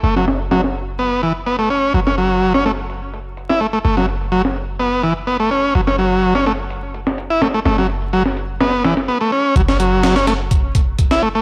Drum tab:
HH |x-xxx-x-x---xxx-|x-x-x-x-x-x-x---|x-xxx-x-x-x-xxx-|x-x-x-x-x-x-x-x-|
SD |-oo-oo----------|-o---oo------o--|-o---o----------|-o---oo----o--o-|
BD |----------------|----------------|----------------|----------------|

HH |x-xxx-x-x-x-----|x-x-x-x-x-x-x---|
SD |oo---o--o-oo----|-o--ooo------o--|
BD |----------------|o-------o-o-o---|